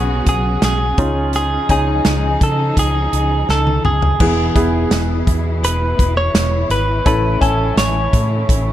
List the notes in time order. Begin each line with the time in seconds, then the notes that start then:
Already playing: B1 B2 C#3 F#3 B3 C#4 F#4 G#4
0.26 B1 G#4, kick, closed hi-hat
0.62 B1 G#4, snare, closed hi-hat
0.97 C#2 C#3 F3 C#4 D#4 F4, kick, closed hi-hat
1.33 G#4, closed hi-hat
1.69 C#2 C#4 D#4 G#4 G#5, kick, closed hi-hat
2.05 C#2, snare, closed hi-hat
2.41 C#3 A4, kick, closed hi-hat
2.77 C#2 G#4, kick, closed hi-hat
3.13 C#2, closed hi-hat
3.49 C#2 A4, snare
3.67 high tom
3.85 C#2 G#4, mid tom
4.02 floor tom
4.18 E1 B2 E3 B3 E4 G#4, kick, crash
4.55 E1 B3 E4 G#4, kick, closed hi-hat
4.91 E1, snare, closed hi-hat
5.27 E2, kick, closed hi-hat
5.63 E1 B4, closed hi-hat
5.99 E1, kick, closed hi-hat
6.17 C#5
6.34 E1, snare, closed hi-hat
6.70 G#1 B4, closed hi-hat
7.05 A1 A2 C#3 A3 C#4 E4 A4 B4, kick, closed hi-hat
7.41 A1 C#4 E4 A4 G#5, kick, closed hi-hat
7.77 A1 C#5, snare, closed hi-hat
8.13 A2, kick, closed hi-hat
8.49 A1, kick, closed hi-hat